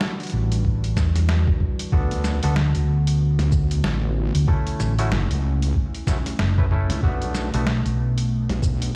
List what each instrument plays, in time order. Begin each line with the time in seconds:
Already playing: ambient pad E3 G3 D4 F#4
0.01 snare
0.20 closed hi-hat
0.23 closed hi-hat
0.27 closed hi-hat
0.30 fingered electric bass A1, closed hi-hat
0.52 closed hi-hat
0.65 kick
0.84 closed hi-hat
0.97 fingered electric bass E2, kick, snare, shaker
1.16 snare, closed hi-hat
1.29 snare
1.47 kick
1.60 kick
1.79 closed hi-hat
1.92 wobble bass D2, ambient pad D3 B3, clav B3 D4 F#4 A4, kick
2.11 wobble bass D2, closed hi-hat
2.24 snare, shaker
2.43 fingered electric bass D2, clav B3 D4 F#4 A4, closed hi-hat
2.56 snare
2.75 fingered electric bass D2, closed hi-hat
3.07 closed hi-hat
3.39 wobble bass D2, snare, closed hi-hat
3.52 kick, shaker
3.71 closed hi-hat
3.84 wobble bass A1, snare
4.35 fingered electric bass D2, closed hi-hat
4.47 ambient pad A3 C#4 E4, clav A3 C#4 E4 A4, kick
4.67 closed hi-hat
4.80 fingered electric bass A1, snare, shaker
4.99 clav A3 C#4 E4 F#4, closed hi-hat
5.12 wobble bass F#1, snare
5.31 wobble bass C#2, closed hi-hat
5.62 closed hi-hat
5.75 kick
5.95 closed hi-hat
6.07 clav A3 C#4 E4 F#4, kick, snare, shaker
6.26 snare, closed hi-hat
6.39 fingered electric bass F#1, snare
6.58 clav A3 C#4 E4 B4, kick
6.71 clav A3 C#4 E4 A4, kick
6.90 wobble bass C#2, snare, closed hi-hat
7.03 wobble bass B1, clav A3 B3 D4 F#4, ambient pad B3 D4, kick
7.22 wobble bass B1, closed hi-hat
7.35 snare, shaker
7.54 fingered electric bass B1, clav A3 B3 D4 F#4, closed hi-hat
7.67 snare
7.86 fingered electric bass B1, closed hi-hat
8.18 closed hi-hat
8.49 wobble bass B1, snare, closed hi-hat
8.62 kick, shaker
8.82 closed hi-hat